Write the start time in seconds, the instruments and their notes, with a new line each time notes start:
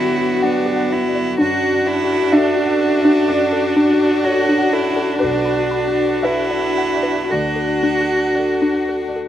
Already playing: ambient pad D3 F#3 B4, grand piano D3 D4 F#4 B4 D5 F#5 G5 A5, viola B3, cello E4, violin F#4
0.12 grand piano F#3
0.42 cello D4, grand piano B4 F#5, synth pluck F#5
0.66 synth pluck G4
0.75 grand piano F#5
0.90 cello E4, synth pluck D5
1.08 grand piano D5
1.16 synth pluck D5
1.38 grand piano F#2, synth pluck D4, ambient pad D4 F#4 A4, viola D4, violin F#4, cello F#4
1.63 synth pluck D5
1.73 grand piano D4
1.87 cello E4, synth pluck D5
2.04 grand piano F#4
2.32 synth pluck D4, cello D4, grand piano E5
2.37 grand piano A4
2.57 synth pluck F#4
2.66 grand piano F#5
2.82 synth pluck A4
2.98 grand piano D5
3.05 synth pluck D4
3.28 grand piano F#2 D5, synth pluck A4
3.53 synth pluck A4
3.62 grand piano D4
3.77 synth pluck D4
3.93 grand piano F#4
4.24 cello F#4, grand piano A4 C#5, synth pluck D5
4.49 synth pluck D4
4.58 grand piano F#5
4.73 cello E4, synth pluck A4
4.91 grand piano D4
4.96 synth pluck A4
5.19 cello D4, grand piano B4, synth pluck B4, ambient pad B4
5.23 grand piano B1
5.45 synth pluck B5
5.56 grand piano D4
5.71 synth pluck B5
5.90 grand piano F#4
6.23 cello E4, synth pluck B4, grand piano B4 E5
6.51 synth pluck D5
6.61 grand piano F#5
6.78 synth pluck F#5
6.96 grand piano D5
7.03 synth pluck B4
7.30 grand piano D2 D5, viola D4, ambient pad D4 F#4 A4, violin F#4, cello F#4, synth pluck A4
7.56 synth pluck A4
7.67 grand piano D4
7.83 synth pluck D4
8.03 grand piano F#4
8.36 grand piano A4, synth pluck D5
8.62 synth pluck D4
8.74 grand piano F#5
8.89 synth pluck A4
9.09 grand piano D5
9.16 synth pluck A4